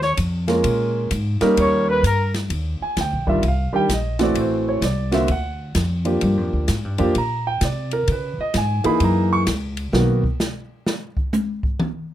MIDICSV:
0, 0, Header, 1, 7, 480
1, 0, Start_track
1, 0, Tempo, 465116
1, 658, Time_signature, 4, 2, 24, 8
1, 12532, End_track
2, 0, Start_track
2, 0, Title_t, "Flugelhorn"
2, 0, Program_c, 0, 56
2, 33, Note_on_c, 0, 73, 91
2, 126, Note_off_c, 0, 73, 0
2, 1657, Note_on_c, 0, 73, 77
2, 1930, Note_off_c, 0, 73, 0
2, 1966, Note_on_c, 0, 71, 94
2, 2105, Note_off_c, 0, 71, 0
2, 2134, Note_on_c, 0, 70, 84
2, 2311, Note_off_c, 0, 70, 0
2, 12532, End_track
3, 0, Start_track
3, 0, Title_t, "Trumpet"
3, 0, Program_c, 1, 56
3, 32, Note_on_c, 1, 73, 76
3, 178, Note_off_c, 1, 73, 0
3, 1645, Note_on_c, 1, 73, 66
3, 1924, Note_off_c, 1, 73, 0
3, 1940, Note_on_c, 1, 71, 74
3, 2091, Note_off_c, 1, 71, 0
3, 2125, Note_on_c, 1, 70, 69
3, 2404, Note_off_c, 1, 70, 0
3, 12532, End_track
4, 0, Start_track
4, 0, Title_t, "Grand piano"
4, 0, Program_c, 2, 0
4, 490, Note_on_c, 2, 56, 69
4, 491, Note_on_c, 2, 58, 68
4, 494, Note_on_c, 2, 61, 64
4, 499, Note_on_c, 2, 65, 64
4, 501, Note_on_c, 2, 70, 74
4, 1104, Note_off_c, 2, 56, 0
4, 1105, Note_off_c, 2, 58, 0
4, 1106, Note_off_c, 2, 61, 0
4, 1108, Note_off_c, 2, 65, 0
4, 1110, Note_off_c, 2, 70, 0
4, 1454, Note_on_c, 2, 55, 84
4, 1455, Note_on_c, 2, 61, 78
4, 1457, Note_on_c, 2, 58, 74
4, 1458, Note_on_c, 2, 63, 77
4, 1463, Note_on_c, 2, 70, 93
4, 2066, Note_off_c, 2, 55, 0
4, 2067, Note_off_c, 2, 61, 0
4, 2068, Note_off_c, 2, 58, 0
4, 2068, Note_off_c, 2, 63, 0
4, 2071, Note_off_c, 2, 70, 0
4, 2915, Note_on_c, 2, 80, 79
4, 3065, Note_off_c, 2, 80, 0
4, 3104, Note_on_c, 2, 79, 80
4, 3372, Note_on_c, 2, 55, 62
4, 3374, Note_on_c, 2, 51, 69
4, 3376, Note_on_c, 2, 62, 60
4, 3379, Note_on_c, 2, 65, 70
4, 3386, Note_off_c, 2, 79, 0
4, 3398, Note_on_c, 2, 76, 78
4, 3522, Note_off_c, 2, 55, 0
4, 3523, Note_off_c, 2, 51, 0
4, 3524, Note_off_c, 2, 62, 0
4, 3525, Note_off_c, 2, 65, 0
4, 3547, Note_off_c, 2, 76, 0
4, 3593, Note_on_c, 2, 77, 72
4, 3844, Note_on_c, 2, 51, 71
4, 3850, Note_on_c, 2, 55, 66
4, 3850, Note_on_c, 2, 62, 62
4, 3855, Note_on_c, 2, 67, 83
4, 3871, Note_off_c, 2, 77, 0
4, 3878, Note_on_c, 2, 79, 92
4, 3998, Note_off_c, 2, 51, 0
4, 4001, Note_off_c, 2, 55, 0
4, 4001, Note_off_c, 2, 62, 0
4, 4003, Note_off_c, 2, 67, 0
4, 4027, Note_off_c, 2, 79, 0
4, 4063, Note_on_c, 2, 75, 66
4, 4325, Note_on_c, 2, 52, 70
4, 4326, Note_on_c, 2, 57, 68
4, 4330, Note_on_c, 2, 60, 68
4, 4332, Note_on_c, 2, 66, 81
4, 4345, Note_off_c, 2, 75, 0
4, 4366, Note_on_c, 2, 74, 84
4, 4511, Note_off_c, 2, 74, 0
4, 4544, Note_on_c, 2, 72, 64
4, 4825, Note_off_c, 2, 72, 0
4, 4836, Note_on_c, 2, 73, 76
4, 4942, Note_off_c, 2, 52, 0
4, 4942, Note_off_c, 2, 57, 0
4, 4944, Note_off_c, 2, 60, 0
4, 4945, Note_off_c, 2, 66, 0
4, 4986, Note_off_c, 2, 73, 0
4, 5006, Note_on_c, 2, 74, 77
4, 5278, Note_on_c, 2, 50, 70
4, 5281, Note_on_c, 2, 58, 63
4, 5285, Note_on_c, 2, 60, 64
4, 5285, Note_on_c, 2, 66, 78
4, 5296, Note_off_c, 2, 74, 0
4, 5308, Note_on_c, 2, 76, 77
4, 5435, Note_off_c, 2, 50, 0
4, 5436, Note_off_c, 2, 58, 0
4, 5438, Note_off_c, 2, 60, 0
4, 5438, Note_off_c, 2, 66, 0
4, 5461, Note_off_c, 2, 76, 0
4, 5486, Note_on_c, 2, 78, 82
4, 6223, Note_off_c, 2, 78, 0
4, 6241, Note_on_c, 2, 53, 67
4, 6247, Note_on_c, 2, 58, 59
4, 6248, Note_on_c, 2, 62, 58
4, 6253, Note_on_c, 2, 67, 69
4, 6859, Note_off_c, 2, 53, 0
4, 6862, Note_off_c, 2, 58, 0
4, 6862, Note_off_c, 2, 62, 0
4, 6865, Note_off_c, 2, 67, 0
4, 7207, Note_on_c, 2, 53, 83
4, 7210, Note_on_c, 2, 58, 78
4, 7212, Note_on_c, 2, 62, 74
4, 7218, Note_on_c, 2, 67, 90
4, 7358, Note_off_c, 2, 53, 0
4, 7360, Note_off_c, 2, 58, 0
4, 7361, Note_off_c, 2, 62, 0
4, 7364, Note_off_c, 2, 67, 0
4, 7410, Note_on_c, 2, 82, 87
4, 7697, Note_off_c, 2, 82, 0
4, 7710, Note_on_c, 2, 79, 91
4, 7862, Note_off_c, 2, 79, 0
4, 7893, Note_on_c, 2, 74, 71
4, 8179, Note_off_c, 2, 74, 0
4, 8183, Note_on_c, 2, 70, 86
4, 8338, Note_off_c, 2, 70, 0
4, 8377, Note_on_c, 2, 71, 68
4, 8661, Note_off_c, 2, 71, 0
4, 8675, Note_on_c, 2, 75, 88
4, 8824, Note_off_c, 2, 75, 0
4, 8849, Note_on_c, 2, 80, 83
4, 9122, Note_on_c, 2, 52, 77
4, 9123, Note_on_c, 2, 58, 66
4, 9129, Note_on_c, 2, 63, 75
4, 9131, Note_on_c, 2, 68, 82
4, 9136, Note_off_c, 2, 80, 0
4, 9143, Note_on_c, 2, 83, 93
4, 9298, Note_off_c, 2, 83, 0
4, 9333, Note_on_c, 2, 82, 75
4, 9618, Note_off_c, 2, 82, 0
4, 9625, Note_on_c, 2, 85, 99
4, 9720, Note_off_c, 2, 85, 0
4, 9738, Note_off_c, 2, 52, 0
4, 9738, Note_off_c, 2, 58, 0
4, 9742, Note_off_c, 2, 63, 0
4, 9743, Note_off_c, 2, 68, 0
4, 10248, Note_on_c, 2, 51, 61
4, 10251, Note_on_c, 2, 58, 59
4, 10255, Note_on_c, 2, 59, 60
4, 10259, Note_on_c, 2, 66, 73
4, 10533, Note_off_c, 2, 51, 0
4, 10534, Note_off_c, 2, 58, 0
4, 10536, Note_off_c, 2, 59, 0
4, 10538, Note_off_c, 2, 66, 0
4, 12532, End_track
5, 0, Start_track
5, 0, Title_t, "Upright bass"
5, 0, Program_c, 3, 32
5, 0, Note_on_c, 3, 39, 88
5, 162, Note_off_c, 3, 39, 0
5, 179, Note_on_c, 3, 41, 84
5, 644, Note_off_c, 3, 41, 0
5, 658, Note_on_c, 3, 46, 86
5, 1124, Note_off_c, 3, 46, 0
5, 1141, Note_on_c, 3, 44, 85
5, 1431, Note_off_c, 3, 44, 0
5, 1621, Note_on_c, 3, 39, 80
5, 2085, Note_off_c, 3, 39, 0
5, 2096, Note_on_c, 3, 43, 82
5, 2563, Note_off_c, 3, 43, 0
5, 2580, Note_on_c, 3, 39, 83
5, 2870, Note_off_c, 3, 39, 0
5, 3062, Note_on_c, 3, 38, 83
5, 3224, Note_on_c, 3, 34, 53
5, 3239, Note_off_c, 3, 38, 0
5, 3370, Note_off_c, 3, 34, 0
5, 3376, Note_on_c, 3, 31, 66
5, 3526, Note_off_c, 3, 31, 0
5, 3534, Note_on_c, 3, 36, 82
5, 3827, Note_off_c, 3, 36, 0
5, 4012, Note_on_c, 3, 34, 76
5, 4480, Note_off_c, 3, 34, 0
5, 4485, Note_on_c, 3, 33, 80
5, 4957, Note_off_c, 3, 33, 0
5, 4969, Note_on_c, 3, 36, 84
5, 5439, Note_off_c, 3, 36, 0
5, 5455, Note_on_c, 3, 38, 78
5, 5922, Note_off_c, 3, 38, 0
5, 5934, Note_on_c, 3, 41, 84
5, 6401, Note_off_c, 3, 41, 0
5, 6418, Note_on_c, 3, 43, 90
5, 6577, Note_off_c, 3, 43, 0
5, 6577, Note_on_c, 3, 41, 53
5, 6733, Note_off_c, 3, 41, 0
5, 6739, Note_on_c, 3, 38, 63
5, 6887, Note_off_c, 3, 38, 0
5, 6898, Note_on_c, 3, 44, 86
5, 7064, Note_off_c, 3, 44, 0
5, 7064, Note_on_c, 3, 43, 57
5, 7212, Note_off_c, 3, 43, 0
5, 7219, Note_on_c, 3, 41, 69
5, 7366, Note_off_c, 3, 41, 0
5, 7382, Note_on_c, 3, 46, 80
5, 7844, Note_off_c, 3, 46, 0
5, 7857, Note_on_c, 3, 48, 88
5, 8322, Note_off_c, 3, 48, 0
5, 8336, Note_on_c, 3, 49, 84
5, 8627, Note_off_c, 3, 49, 0
5, 8816, Note_on_c, 3, 44, 85
5, 9107, Note_off_c, 3, 44, 0
5, 9289, Note_on_c, 3, 42, 82
5, 9757, Note_off_c, 3, 42, 0
5, 9767, Note_on_c, 3, 37, 86
5, 10236, Note_off_c, 3, 37, 0
5, 10243, Note_on_c, 3, 35, 86
5, 10552, Note_off_c, 3, 35, 0
5, 12532, End_track
6, 0, Start_track
6, 0, Title_t, "Muted upright bass strokes"
6, 1456, Note_on_c, 9, 29, 38
6, 1559, Note_off_c, 9, 29, 0
6, 2897, Note_on_c, 9, 29, 38
6, 3000, Note_off_c, 9, 29, 0
6, 3845, Note_on_c, 9, 29, 36
6, 3949, Note_off_c, 9, 29, 0
6, 8650, Note_on_c, 9, 29, 40
6, 8753, Note_off_c, 9, 29, 0
6, 9129, Note_on_c, 9, 29, 40
6, 9232, Note_off_c, 9, 29, 0
6, 12532, End_track
7, 0, Start_track
7, 0, Title_t, "Drums"
7, 17, Note_on_c, 9, 38, 34
7, 120, Note_off_c, 9, 38, 0
7, 179, Note_on_c, 9, 44, 54
7, 179, Note_on_c, 9, 51, 72
7, 282, Note_off_c, 9, 44, 0
7, 282, Note_off_c, 9, 51, 0
7, 494, Note_on_c, 9, 51, 46
7, 495, Note_on_c, 9, 38, 48
7, 597, Note_off_c, 9, 51, 0
7, 598, Note_off_c, 9, 38, 0
7, 659, Note_on_c, 9, 51, 71
7, 763, Note_off_c, 9, 51, 0
7, 1142, Note_on_c, 9, 44, 57
7, 1142, Note_on_c, 9, 51, 68
7, 1245, Note_off_c, 9, 44, 0
7, 1245, Note_off_c, 9, 51, 0
7, 1454, Note_on_c, 9, 51, 51
7, 1455, Note_on_c, 9, 38, 37
7, 1557, Note_off_c, 9, 51, 0
7, 1558, Note_off_c, 9, 38, 0
7, 1623, Note_on_c, 9, 51, 69
7, 1726, Note_off_c, 9, 51, 0
7, 2106, Note_on_c, 9, 44, 59
7, 2106, Note_on_c, 9, 51, 71
7, 2210, Note_off_c, 9, 44, 0
7, 2210, Note_off_c, 9, 51, 0
7, 2418, Note_on_c, 9, 51, 49
7, 2419, Note_on_c, 9, 38, 51
7, 2522, Note_off_c, 9, 51, 0
7, 2523, Note_off_c, 9, 38, 0
7, 2581, Note_on_c, 9, 51, 62
7, 2684, Note_off_c, 9, 51, 0
7, 3062, Note_on_c, 9, 44, 52
7, 3062, Note_on_c, 9, 51, 64
7, 3063, Note_on_c, 9, 38, 60
7, 3165, Note_off_c, 9, 44, 0
7, 3165, Note_off_c, 9, 51, 0
7, 3166, Note_off_c, 9, 38, 0
7, 3373, Note_on_c, 9, 36, 56
7, 3476, Note_off_c, 9, 36, 0
7, 3538, Note_on_c, 9, 51, 56
7, 3641, Note_off_c, 9, 51, 0
7, 4020, Note_on_c, 9, 44, 63
7, 4020, Note_on_c, 9, 51, 62
7, 4021, Note_on_c, 9, 38, 64
7, 4123, Note_off_c, 9, 44, 0
7, 4123, Note_off_c, 9, 51, 0
7, 4124, Note_off_c, 9, 38, 0
7, 4326, Note_on_c, 9, 51, 44
7, 4327, Note_on_c, 9, 38, 46
7, 4429, Note_off_c, 9, 51, 0
7, 4430, Note_off_c, 9, 38, 0
7, 4493, Note_on_c, 9, 51, 63
7, 4596, Note_off_c, 9, 51, 0
7, 4975, Note_on_c, 9, 44, 52
7, 4975, Note_on_c, 9, 51, 59
7, 4976, Note_on_c, 9, 38, 67
7, 5078, Note_off_c, 9, 44, 0
7, 5078, Note_off_c, 9, 51, 0
7, 5079, Note_off_c, 9, 38, 0
7, 5286, Note_on_c, 9, 51, 47
7, 5287, Note_on_c, 9, 38, 46
7, 5389, Note_off_c, 9, 51, 0
7, 5390, Note_off_c, 9, 38, 0
7, 5449, Note_on_c, 9, 51, 55
7, 5553, Note_off_c, 9, 51, 0
7, 5931, Note_on_c, 9, 44, 59
7, 5931, Note_on_c, 9, 51, 67
7, 5932, Note_on_c, 9, 38, 66
7, 6035, Note_off_c, 9, 44, 0
7, 6035, Note_off_c, 9, 51, 0
7, 6036, Note_off_c, 9, 38, 0
7, 6244, Note_on_c, 9, 51, 46
7, 6347, Note_off_c, 9, 51, 0
7, 6410, Note_on_c, 9, 51, 59
7, 6513, Note_off_c, 9, 51, 0
7, 6892, Note_on_c, 9, 44, 58
7, 6892, Note_on_c, 9, 51, 64
7, 6893, Note_on_c, 9, 38, 68
7, 6995, Note_off_c, 9, 44, 0
7, 6995, Note_off_c, 9, 51, 0
7, 6996, Note_off_c, 9, 38, 0
7, 7205, Note_on_c, 9, 51, 48
7, 7308, Note_off_c, 9, 51, 0
7, 7377, Note_on_c, 9, 51, 61
7, 7480, Note_off_c, 9, 51, 0
7, 7853, Note_on_c, 9, 44, 59
7, 7853, Note_on_c, 9, 51, 67
7, 7854, Note_on_c, 9, 38, 64
7, 7956, Note_off_c, 9, 44, 0
7, 7956, Note_off_c, 9, 51, 0
7, 7957, Note_off_c, 9, 38, 0
7, 8166, Note_on_c, 9, 51, 45
7, 8269, Note_off_c, 9, 51, 0
7, 8334, Note_on_c, 9, 51, 64
7, 8437, Note_off_c, 9, 51, 0
7, 8811, Note_on_c, 9, 44, 49
7, 8811, Note_on_c, 9, 51, 70
7, 8812, Note_on_c, 9, 38, 68
7, 8915, Note_off_c, 9, 44, 0
7, 8915, Note_off_c, 9, 51, 0
7, 8916, Note_off_c, 9, 38, 0
7, 9125, Note_on_c, 9, 51, 50
7, 9228, Note_off_c, 9, 51, 0
7, 9289, Note_on_c, 9, 51, 63
7, 9392, Note_off_c, 9, 51, 0
7, 9769, Note_on_c, 9, 44, 56
7, 9769, Note_on_c, 9, 51, 74
7, 9770, Note_on_c, 9, 38, 69
7, 9872, Note_off_c, 9, 44, 0
7, 9872, Note_off_c, 9, 51, 0
7, 9873, Note_off_c, 9, 38, 0
7, 10082, Note_on_c, 9, 51, 47
7, 10185, Note_off_c, 9, 51, 0
7, 10251, Note_on_c, 9, 38, 97
7, 10354, Note_off_c, 9, 38, 0
7, 10565, Note_on_c, 9, 36, 75
7, 10668, Note_off_c, 9, 36, 0
7, 10732, Note_on_c, 9, 44, 58
7, 10733, Note_on_c, 9, 38, 99
7, 10835, Note_off_c, 9, 44, 0
7, 10836, Note_off_c, 9, 38, 0
7, 11213, Note_on_c, 9, 38, 92
7, 11316, Note_off_c, 9, 38, 0
7, 11524, Note_on_c, 9, 36, 75
7, 11627, Note_off_c, 9, 36, 0
7, 11692, Note_on_c, 9, 44, 56
7, 11693, Note_on_c, 9, 48, 92
7, 11795, Note_off_c, 9, 44, 0
7, 11796, Note_off_c, 9, 48, 0
7, 12005, Note_on_c, 9, 36, 75
7, 12108, Note_off_c, 9, 36, 0
7, 12173, Note_on_c, 9, 47, 103
7, 12276, Note_off_c, 9, 47, 0
7, 12532, End_track
0, 0, End_of_file